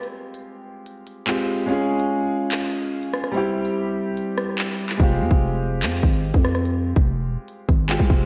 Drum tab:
HH |x-----x---------x---x-----x-xxxx|x-----x---------x-----x---x-x-x-|x-----x---------x---x-----x-x-x-|x-----x---------x-----x---x-x-x-|
CP |------------------------x-------|----------------x---------------|------------------------x-----x-|----------------x---------------|
SD |--------------------------------|----------------------------r-r-|--------------------r-----------|----------------------------r-r-|
BD |--------------------------------|--------------------------------|--------------------------------|o-----o-------------o-----o-----|

HH |x-----x---------x---x-----x-xxx-|
CP |------------------------x-------|
SD |--------------------------------|
BD |------o-------------o-----o-o---|